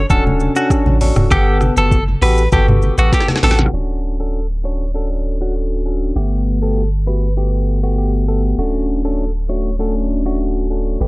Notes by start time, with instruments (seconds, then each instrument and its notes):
0.10 sub bass D1, tine electric piano C#4 D4 F#4 A4, clean electric guitar A4, kick, low conga, shaker
0.27 high conga
0.40 high conga, shaker
0.56 tine electric piano C#4 D4 F#4 A4, clean electric guitar F#4, shaker
0.70 kick, cross-stick, shaker
0.86 sub bass A1, high conga
1.01 tine electric piano C#4 D4 F#4 A4, open hi-hat, low conga, shaker
1.16 sub bass D1, cross-stick, mid tom, high conga, shaker
1.31 sub bass G1, tine electric piano B3 G4 A4 F#5, clean electric guitar G4, kick, cross-stick, shaker
1.61 cross-stick, high conga, shaker
1.77 sub bass F#1, tine electric piano B3 F#4 G4 A4, clean electric guitar A4, shaker
1.91 kick, shaker
2.08 high conga
2.22 sub bass A1, tine electric piano B3 F#4 G4 A4, clean electric guitar B4, open hi-hat, shaker
2.38 shaker
2.52 sub bass G1, tine electric piano B3 F#4 G4 A4, clean electric guitar G4, kick, low conga, shaker
2.68 mid tom, high conga
2.82 high conga, shaker
2.98 sub bass A1, tine electric piano B3 F#4 G4 A4, clean electric guitar F#4, shaker
3.13 clean electric guitar G4, kick, snare, shaker
3.20 snare
3.28 snare, high conga
3.36 snare
3.43 sub bass A1, tine electric piano B3 F#4 G4 A4, clean electric guitar A4, snare, open hi-hat, low conga, shaker
3.51 snare
3.58 snare, high conga, shaker
3.66 snare
3.73 sub bass D1, tine electric piano C#4 D4 F#4, clean electric guitar F#4
4.19 tine electric piano C#4 D4 F#4 A4, clean electric guitar A4
4.64 tine electric piano C#4 D4 F#4 A4, clean electric guitar C#5
4.94 tine electric piano C#4 D4 F#4 A4, clean electric guitar A4
5.40 tine electric piano C#4 D4 F#4 A4, clean electric guitar F#4
5.85 tine electric piano C#4 D4 F#4 A4
6.16 sub bass G1, tine electric piano A3 B3 G4 F#5, clean electric guitar G4
6.62 tine electric piano A3 B3 F#4 G4, clean electric guitar A4
7.06 tine electric piano A3 B3 F#4 G4, clean electric guitar B4
7.37 tine electric piano A3 B3 F#4 G4, clean electric guitar G4
7.83 tine electric piano A3 B3 F#4 G4, clean electric guitar F#4
7.98 clean electric guitar G4
8.28 tine electric piano A3 B3 F#4 G4, clean electric guitar A4
8.58 sub bass D1, tine electric piano A3 C#4 D4 F#4, clean electric guitar F#4
9.04 tine electric piano A3 C#4 D4 F#4, clean electric guitar A4
9.49 tine electric piano A3 C#4 D4 F#4, clean electric guitar C#5
9.79 tine electric piano A3 C#4 D4 F#4, clean electric guitar A4
10.25 tine electric piano A3 C#4 D4 F#4, clean electric guitar F#4
10.70 tine electric piano A3 C#4 D4 F#4
11.00 sub bass G1, tine electric piano G3 A3 B3 F#5, clean electric guitar G4